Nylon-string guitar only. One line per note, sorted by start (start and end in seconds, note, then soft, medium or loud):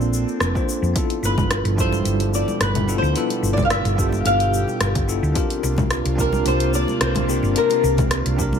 1.25 1.80 B4 medium
1.80 2.34 C5 medium
2.35 2.62 D5 medium
2.62 2.98 B4 medium
2.98 3.16 C5 medium
3.16 3.53 B4 medium
3.53 3.64 D5 medium
3.65 3.70 F5 medium
3.71 4.22 E5 medium
4.26 5.05 F5 loud
6.20 6.45 A#4 medium
6.48 6.74 C5 medium
6.75 7.02 D5 loud
7.02 7.53 C5 medium
7.58 8.59 A#4 medium